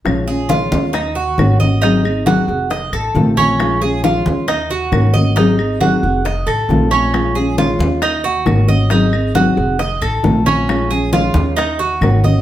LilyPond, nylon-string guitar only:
\new Staff \with { instrumentName = "Nylon-string guitar" } { \time 4/4 \key bes \minor \tempo 4 = 136 <f aes des' f'>8 <aes des' f'>8 <f aes des' f'>8 <aes des' f'>8 r4 <ees bes des' ges'>8 <bes des' ges'>8 | <ees ges c' ees' aes'>8 <c' ees' aes'>8 <ees ges c' ees' aes'>8 <c' ees' aes'>8 r4 <c ees a c' f'>8 <a c' f'>8 | <f aes des' f'>8 <aes des' f'>8 <f aes des' f'>8 <aes des' f'>8 r4 <ees bes des' ges'>8 <bes des' ges'>8 | <ees ges c' ees' aes'>8 <c' ees'>8 <ees ges c' ees' aes'>8 <c' ees' aes'>8 r4 <c ees a c' f'>8 <a c' f'>8 |
<f aes des' f'>8 <aes des' f'>8 <f aes des' f'>8 <aes des' f'>8 r4 <ees bes des' ges'>8 <bes des' ges'>8 | <ees ges c' ees' aes'>8 <c' ees' aes'>8 <ees ges c' ees' aes'>8 <c' ees' aes'>8 r4 <c ees a c' f'>8 <a c' f'>8 | <f aes des' f'>8 <aes des'>8 <f aes des' f'>8 <aes des' f'>8 r4 <ees bes des' ges'>8 <bes des' ges'>8 | }